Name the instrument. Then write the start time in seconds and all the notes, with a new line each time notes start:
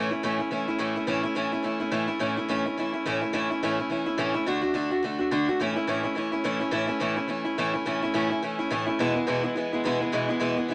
steel-string acoustic guitar
Already playing: A2 E3 A3 C#4
0.11 A3 C#4 E4
0.23 A2 E3 A3 C#4 E4
0.39 A3 C#4 E4
0.51 E3 A3 C#4 E4
0.68 A3 C#4 E4
0.78 A2 E3 A3 C#4 E4
0.96 A3 C#4 E4
1.07 A2 E3 A3 C#4 E4
1.23 A3 C#4 E4
1.35 A2 E3 A3 C#4 E4
1.52 A3 C#4 E4
1.63 E3 A3 C#4 E4
1.80 A3 C#4 E4
1.91 A2 E3 A3 C#4 E4
2.08 A3 C#4 E4
2.19 A2 E3 A3 C#4 E4
2.37 A3 C#4 E4
2.48 A2 E3 A3 C#4 E4
2.66 A3 C#4 E4
2.77 E3 A3 C#4 E4
2.94 A3 C#4 E4
3.06 A2 E3 A3 C#4 E4
3.21 A3 C#4 E4
3.33 A2 E3 A3 C#4 E4
3.51 A3 C#4 E4
3.63 A2 E3 A3 C#4 E4
3.79 A3 C#4 E4
3.90 E3 A3 C#4 E4
4.06 A3 C#4 E4
4.18 A2 E3 A3 C#4 E4
4.34 A3 C#4 E4
4.46 D3 A3 D4 F#4
4.62 A3 D4 F#4
4.74 D3 A3 D4 F#4
4.91 A3 D4 F#4
5.03 D3 A3 D4 F#4
5.18 A3 D4 F#4
5.31 D3 A3 D4 F#4
5.49 A3 D4 F#4
5.60 A2 E3 A3 C#4 E4
5.76 A3 C#4 E4
5.87 A2 E3 A3 C#4 E4
6.03 A3 C#4 E4
6.15 E3 A3 C#4 E4
6.32 A3 C#4 E4
6.44 A2 E3 A3 C#4 E4
6.60 A3 C#4 E4
6.71 A2 E3 A3 C#4 E4
6.87 A3 C#4 E4
7.00 A2 E3 A3 C#4 E4
7.16 A3 C#4 E4
7.28 E3 A3 C#4 E4
7.45 A3 C#4 E4
7.58 A2 E3 A3 C#4 E4
7.74 A3 C#4 E4
7.85 A2 E3 A3 C#4 E4
8.02 A3 C#4 E4
8.14 A2 E3 A3 C#4 E4
8.30 A3 C#4 E4
8.42 E3 A3 C#4 E4
8.59 A3 C#4 E4
8.70 A2 E3 A3 C#4 E4
8.86 A3 C#4 E4
8.99 E2 B2 E3 G#3 B3 E4
9.15 E3 G#3 B3 E4
9.27 E2 B2 E3 G#3 B3 E4
9.43 E3 G#3 B3 E4
9.56 E3 G#3 B3 E4
9.73 E3 G#3 B3 E4
9.84 E2 B2 E3 G#3 B3 E4
10.00 E3 G#3 B3 E4
10.12 E2 B2 E3 G#3 B3 E4
10.29 E3 G#3 B3 E4
10.39 E2 B2 E3 G#3 B3 E4
10.57 E3 G#3 B3 E4
10.68 E3 G#3 B3 E4